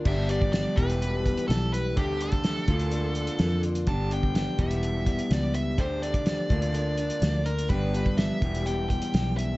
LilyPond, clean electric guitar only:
\new Staff \with { instrumentName = "Clean electric guitar" } { \time 4/4 \key g \mixolydian \tempo 4 = 126 <g, d g b d' g'>4. <e, b, e g e' g'>2~ <e, b, e g e' g'>8 | <d a d' g'>4. <d bes d' f'>2~ <d bes d' f'>8 | <g, d g b d' g'>4. <e, b, e g b g'>2~ <e, b, e g b g'>8 | <d a d' g'>4. <d bes d' f'>2~ <d bes d' f'>8 |
<g, d g b d' g'>4. <e, b, e g b g'>2~ <e, b, e g b g'>8 | }